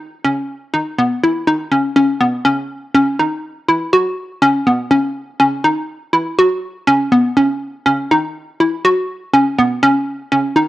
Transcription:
0.00 0.15 D#4 medium
0.24 0.64 C#4 medium
0.74 0.94 D#4 medium
0.98 1.18 B3 medium
1.23 1.43 E4 medium
1.47 1.67 D#4 medium
1.72 1.92 C#4 medium
1.96 2.16 C#4 medium
2.21 2.41 B3 medium
2.45 2.85 C#4 medium
2.95 3.15 C#4 medium
3.19 3.59 D#4 medium
3.69 3.88 E4 medium
3.93 4.33 F#4 medium
4.42 4.62 C#4 loud
4.67 4.87 B3 medium
4.91 5.31 C#4 medium
5.40 5.60 C#4 medium
5.64 6.04 D#4 medium
6.13 6.33 E4 medium
6.39 6.78 F#4 medium
6.87 7.07 C#4 medium
7.12 7.32 B3 medium
7.37 7.76 C#4 medium
7.86 8.06 C#4 medium
8.11 8.51 D#4 medium
8.60 8.80 E4 medium
8.85 9.24 F#4 medium
9.33 9.53 C#4 medium
9.58 9.78 B3 medium
9.83 10.22 C#4 medium
10.32 10.52 C#4 medium
10.56 10.68 D#4 medium

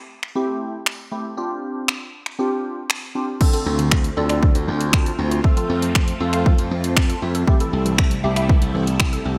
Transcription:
0.23 finger snap medium
0.35 0.75 A3 medium
0.35 0.76 C4 medium
0.35 0.76 E4 medium
0.35 0.76 G4 medium
0.86 finger snap loud
1.12 1.25 A3 medium
1.12 1.25 C4 medium
1.12 1.25 E4 medium
1.12 1.25 G4 medium
1.37 1.91 C4 medium
1.37 1.91 D4 medium
1.37 1.91 F4 medium
1.37 1.91 G4 medium
1.88 finger snap medium
2.26 finger snap medium
2.39 2.79 C4 medium
2.39 2.79 D4 medium
2.39 2.79 F4 medium
2.39 2.79 G4 medium
2.90 finger snap loud
3.15 3.29 C4 medium
3.15 3.29 D4 medium
3.15 3.29 F4 medium
3.15 3.29 G4 medium
3.40 3.50 D3 medium
3.40 5.42 D3 medium
3.40 7.44 A3 medium
3.40 3.47 C4 medium
3.40 7.44 C4 medium
3.40 3.47 D4 medium
3.40 7.44 F4 medium
3.40 3.47 F4 medium
3.40 3.48 A4 medium
3.40 kick loud
3.40 crash medium
3.53 3.63 D3 medium
3.53 3.87 C4 medium
3.53 3.87 D4 medium
3.53 3.87 F4 medium
3.53 3.87 A4 medium
3.53 closed hi-hat medium
3.66 4.09 D2 medium
3.79 3.88 D3 medium
3.79 closed hi-hat medium
3.91 4.01 C4 medium
3.91 finger snap loud
3.91 kick loud
4.04 closed hi-hat medium
4.17 4.49 D2 medium
4.17 4.70 C4 medium
4.17 4.70 D4 medium
4.17 4.70 F4 medium
4.17 4.70 A4 medium
4.17 4.26 D5 medium
4.29 4.39 D5 medium
4.29 finger snap medium
4.29 closed hi-hat medium
4.42 4.52 D3 medium
4.42 kick loud
4.55 4.66 D2 medium
4.55 closed hi-hat medium
4.68 5.10 D2 medium
4.68 4.77 D3 medium
4.81 closed hi-hat medium
4.93 5.03 C4 medium
4.93 finger snap loud
4.93 kick loud
5.06 5.15 F4 medium
5.06 closed hi-hat soft
5.19 5.40 D2 loud
5.19 5.28 C4 medium
5.31 5.41 F4 medium
5.31 closed hi-hat medium
5.44 5.54 F3 loud
5.44 5.51 A3 medium
5.44 5.51 C4 medium
5.44 5.51 F4 medium
5.44 5.51 A4 medium
5.44 kick loud
5.57 5.66 F3 medium
5.57 5.90 A3 medium
5.57 5.90 C4 medium
5.57 5.90 F4 medium
5.57 5.90 A4 medium
5.57 closed hi-hat medium
5.70 6.12 F2 medium
5.82 5.92 F3 medium
5.82 closed hi-hat medium
5.95 6.04 C4 medium
5.95 finger snap medium
5.95 kick loud
6.08 closed hi-hat medium
6.20 6.52 F2 loud
6.20 6.74 A3 medium
6.20 6.74 C4 medium
6.20 6.74 F4 medium
6.20 6.74 A4 medium
6.20 6.30 F5 medium
6.33 6.43 F5 medium
6.33 finger snap medium
6.33 closed hi-hat medium
6.46 6.55 F3 medium
6.46 kick loud
6.58 6.69 F2 medium
6.58 closed hi-hat soft
6.71 7.14 F2 medium
6.71 6.81 F3 medium
6.84 closed hi-hat medium
6.97 7.06 C4 medium
6.97 7.20 A5 medium
6.97 finger snap loud
6.97 kick loud
7.09 7.19 A4 medium
7.09 closed hi-hat medium
7.22 7.43 F2 loud
7.22 7.32 C4 medium
7.22 7.46 E5 medium
7.35 7.44 A4 medium
7.35 closed hi-hat medium
7.47 9.38 C3 medium
7.47 7.57 E3 loud
7.47 9.38 G3 medium
7.47 7.54 A3 medium
7.47 9.38 A3 medium
7.47 7.54 C4 medium
7.47 9.38 E4 medium
7.47 7.54 E4 medium
7.47 7.54 G4 medium
7.47 kick loud
7.60 7.70 E3 medium
7.60 7.93 A3 medium
7.60 7.94 C4 medium
7.60 7.94 E4 medium
7.60 7.94 A4 medium
7.60 closed hi-hat medium
7.73 8.15 C2 medium
7.86 7.95 E3 medium
7.86 closed hi-hat medium
7.98 8.08 C4 medium
7.98 finger snap medium
7.98 kick loud
8.11 closed hi-hat medium
8.24 8.56 C2 loud
8.24 8.77 A3 medium
8.24 8.77 C4 medium
8.24 8.77 E4 medium
8.24 8.77 G4 medium
8.24 8.33 E5 medium
8.36 8.46 E5 medium
8.36 finger snap medium
8.36 closed hi-hat medium
8.49 8.59 E3 medium
8.49 kick loud
8.62 8.72 C2 medium
8.62 closed hi-hat soft
8.75 9.17 C2 medium
8.75 8.84 E3 medium
8.87 closed hi-hat medium
9.00 9.09 C4 medium
9.00 finger snap loud
9.00 kick loud
9.13 9.22 A4 medium
9.13 closed hi-hat medium
9.25 9.38 C2 loud
9.25 9.35 C4 medium

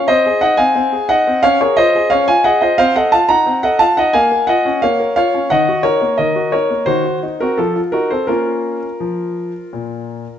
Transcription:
0.08 0.25 C4 medium
0.08 0.40 C5 medium
0.08 0.41 D#5 loud
0.26 0.44 G#4 medium
0.41 0.60 D#4 medium
0.41 0.58 D#5 medium
0.41 0.59 F#5 loud
0.57 0.74 C4 medium
0.57 1.06 F5 medium
0.57 1.09 G#5 loud
0.76 0.92 C4 medium
0.93 1.11 G#4 medium
1.09 1.28 D#4 medium
1.09 1.41 D#5 medium
1.09 1.43 F#5 loud
1.27 1.44 C4 medium
1.43 1.60 C#4 medium
1.43 1.59 C#5 medium
1.43 1.60 F5 loud
1.61 1.78 G#4 medium
1.61 1.77 A#4 medium
1.61 1.77 C#5 medium
1.77 1.95 F4 medium
1.77 2.09 C5 medium
1.77 2.10 D#5 loud
1.95 2.12 G#4 medium
2.10 2.28 C#4 medium
2.10 2.27 C#5 medium
2.10 2.27 F5 loud
2.28 2.46 F4 medium
2.28 2.44 F5 medium
2.28 2.45 G#5 loud
2.44 2.63 G#4 medium
2.44 2.60 D#5 medium
2.44 2.61 F#5 loud
2.62 2.79 F4 soft
2.62 2.78 C5 medium
2.62 2.79 D#5 medium
2.78 2.95 C4 medium
2.78 2.95 C5 medium
2.78 2.95 F5 loud
2.96 3.14 A4 medium
2.96 3.12 D#5 medium
2.96 3.13 F#5 loud
3.12 3.31 F4 medium
3.12 3.29 F5 medium
3.12 3.29 A5 loud
3.29 3.47 D#4 medium
3.29 3.61 F#5 medium
3.29 3.59 A#5 loud
3.47 3.63 C4 medium
3.63 3.81 A4 medium
3.63 3.80 D#5 medium
3.63 3.80 F#5 loud
3.79 3.98 F4 medium
3.79 3.96 F5 medium
3.79 3.97 A5 loud
3.97 4.15 D#4 medium
3.97 4.14 D#5 medium
3.97 4.14 F#5 medium
4.13 4.31 A#3 medium
4.13 4.46 F5 medium
4.13 4.48 G#5 loud
4.32 4.49 A#4 medium
4.47 4.66 F4 medium
4.47 4.80 D#5 medium
4.47 4.78 F#5 loud
4.65 4.83 C#4 medium
4.82 4.99 A#3 medium
4.82 5.14 C#5 medium
4.82 5.13 F5 loud
5.00 5.17 A#4 medium
5.16 5.34 F4 medium
5.16 5.48 C#5 medium
5.16 5.50 F5 loud
5.34 5.50 C#4 soft
5.50 5.67 D#3 medium
5.50 5.82 D#5 medium
5.50 5.84 F#5 loud
5.69 5.85 F#4 medium
5.83 6.02 D#4 medium
5.83 6.16 A#4 medium
5.83 6.17 C#5 loud
6.01 6.19 A#3 medium
6.17 6.35 D#3 medium
6.17 6.50 A#4 medium
6.17 6.52 D#5 medium
6.36 6.53 F#4 medium
6.52 6.71 D#4 soft
6.52 6.85 A#4 medium
6.52 6.83 C#5 medium
6.70 6.87 A#3 medium
6.86 7.04 D#3 medium
6.86 7.03 F#4 medium
6.86 7.18 C5 medium
7.04 7.23 F#4 soft
7.23 7.41 D#4 medium
7.41 7.58 C4 soft
7.41 7.58 F#4 medium
7.41 7.58 A#4 medium
7.58 7.75 F3 medium
7.58 7.74 F4 medium
7.58 7.79 A4 medium
7.76 7.94 F4 soft
7.92 8.12 D#4 soft
7.92 8.10 F#4 medium
7.92 8.10 A#4 medium
8.10 8.29 C4 soft
8.10 8.28 A4 medium
8.10 8.29 C5 medium
8.27 8.79 A#3 medium
8.27 8.86 C#4 soft
8.27 10.39 F4 medium
8.27 10.39 A#4 medium
9.00 9.51 F3 medium
9.73 10.23 A#2 soft

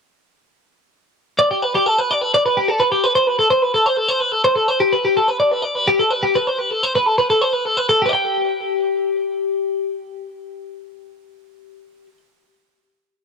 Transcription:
1.39 1.51 D5 medium
1.51 1.62 G4 medium
1.62 1.74 B4 medium
1.75 1.86 G4 medium
1.86 1.98 A4 medium
1.99 2.11 B4 medium
2.11 2.22 D5 medium
2.22 2.33 B4 medium
2.34 2.45 D5 medium
2.46 2.57 B4 medium
2.57 2.68 G4 medium
2.68 2.80 A4 medium
2.80 2.91 B4 medium
2.92 3.04 G4 medium
3.04 3.15 B4 medium
3.15 3.27 C5 medium
3.27 3.38 B4 medium
3.39 3.50 A4 medium
3.50 3.62 C5 medium
3.62 3.74 B4 medium
3.74 3.86 A4 medium
3.86 3.97 C5 medium
3.97 4.09 A4 medium
4.09 4.20 C5 medium
4.20 4.32 B4 medium
4.32 4.44 A4 medium
4.44 4.55 C5 medium
4.56 4.68 A4 medium
4.68 4.81 C5 medium
4.80 4.93 G4 medium
4.93 5.05 B4 medium
5.05 5.17 G4 medium
5.17 5.28 A4 medium
5.28 5.39 B4 medium
5.40 5.52 D5 medium
5.52 5.62 B4 medium
5.62 5.75 D5 medium
5.75 5.87 B4 medium
5.88 6.00 G4 medium
5.99 6.11 A4 medium
6.11 6.23 B4 medium
6.23 6.35 G4 medium
6.35 6.47 B4 medium
6.47 6.59 C5 medium
6.59 6.71 B4 medium
6.71 6.83 A4 medium
6.83 6.95 C5 medium
6.96 7.06 B4 medium
7.06 7.18 A4 medium
7.18 7.30 B4 medium
7.30 7.42 A4 medium
7.42 7.53 C5 medium
7.53 7.65 B4 medium
7.65 7.77 A4 medium
7.77 7.89 B4 medium
7.89 8.01 A4 medium
8.02 12.06 G4 medium
8.02 8.09 B4 medium
8.09 8.13 D5 medium
8.09 12.17 G5 medium

